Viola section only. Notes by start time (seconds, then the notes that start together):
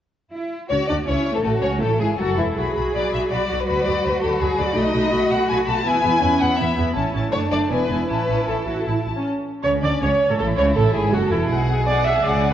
0.70 C#4
0.88 D4
1.06 C#4
1.34 A3
1.44 A3
1.63 C#4
1.82 A3
2.00 G#3
2.19 F#3
2.38 E3
2.57 F#3 F#4
2.75 F#3 F#4
2.94 F#3 F#4
3.13 F#3 F#4
3.31 F#3 F#4
3.49 F#3 F#4
3.67 F#3 F#4
3.86 F#3 F#4
4.04 F#3 F#4
4.23 F#3 F#4
4.40 F#3 F#4
4.58 F#3 F#4
4.76 A3 F#4
4.94 A3 F#4
5.12 A3 F#4
5.30 A3 F#4
5.49 A3 F#4
5.66 A3 F#4
5.85 B3 E4
6.03 B3 E4
6.21 B3 E4
6.40 B3 E4
6.58 B3 E4
6.76 B3 E4
6.94 C#4 E4
7.13 C#4 E4
7.32 A3 D4
7.51 A3 D4
7.70 B3 E4
7.89 B3 E4
8.08 C#4 E4
8.28 C#4 E4
8.47 E4
8.66 F#4
8.86 E4
9.16 C#4
9.63 C#5
9.82 D5
10.01 C#5
10.29 A4
10.38 A4
10.57 C#5
10.75 A4
10.94 G#4
11.13 F#4
11.30 E4
11.86 D5
12.04 E5
12.23 D5